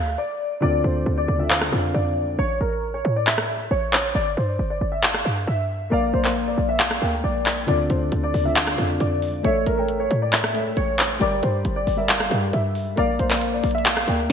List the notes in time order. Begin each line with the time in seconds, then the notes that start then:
Already playing: D2 F5
0.18 D5
0.61 D2 D3 C4 F4 D5
0.84 D2 C5
1.06 D2
1.18 D5
1.28 D2
1.38 D3 C4 F4 D5 E5
1.50 F5, clap
1.62 cross-stick
1.71 F2 D3 C4 F4 D5
1.94 F2 D5
2.39 A1 C#5
2.61 A1 A#4
2.94 C#5
3.05 A2
3.16 D5
3.27 E5, clap
3.38 cross-stick
3.71 A1 C#5
3.93 clap
4.15 G1 D5
4.37 G2 C5
4.59 G1
4.70 D5
4.81 G1
4.92 E5
5.03 F5, clap
5.14 cross-stick
5.25 G2
5.47 G2 E5
5.90 A#1 A#3 A#4 D5 F5
6.14 A#1 C5
6.23 A#3 A#4 D5 F5, clap
6.48 D5
6.58 A#1
6.69 E5
6.80 F5, clap
6.91 cross-stick
7.00 D2 A#3 A#4 D5 G5
7.24 A#1 D5
7.46 clap
7.67 D2 D3 C4 F4 D5, closed hi-hat
7.90 D2 C5, closed hi-hat
8.12 D2, closed hi-hat
8.23 D5
8.34 D2, open hi-hat
8.44 D3 C4 F4 D5 E5
8.56 F5, clap, closed hi-hat
8.67 cross-stick
8.77 F2 D3 C4 F4 D5, closed hi-hat
9.00 F2 D5, closed hi-hat
9.22 open hi-hat
9.43 A1 A3 A4 C#5 E5, closed hi-hat
9.67 A1 A#4, closed hi-hat
9.76 A3 A4 C#5 G5
9.89 closed hi-hat
10.00 C#5
10.11 A2, closed hi-hat
10.22 D5
10.33 E5, clap, closed hi-hat
10.44 cross-stick
10.53 A3 A4 C#5 E5, closed hi-hat
10.77 A1 C#5, closed hi-hat
10.99 clap
11.19 G1 G3 G4 A#4 D5, closed hi-hat
11.43 G2 C5, closed hi-hat
11.65 G1, closed hi-hat
11.76 D5
11.87 G1, open hi-hat
11.97 G3 G4 A#4 D5 E5
12.09 F5, clap, closed hi-hat
12.20 cross-stick
12.30 G2 G3 G4 A#4 D5, closed hi-hat
12.53 G2 E5, closed hi-hat
12.75 open hi-hat
12.96 A#1 A#3 A#4 D5 F5, closed hi-hat
13.19 A#1 C5, closed hi-hat
13.29 A#3 A#4 D5 F5, clap
13.42 closed hi-hat
13.54 D5
13.64 A#1, closed hi-hat, open hi-hat
13.71 E5, closed hi-hat
13.78 closed hi-hat
13.86 F5, clap, closed hi-hat
13.97 cross-stick
14.06 D2 A#3 A#4 D5 G5, closed hi-hat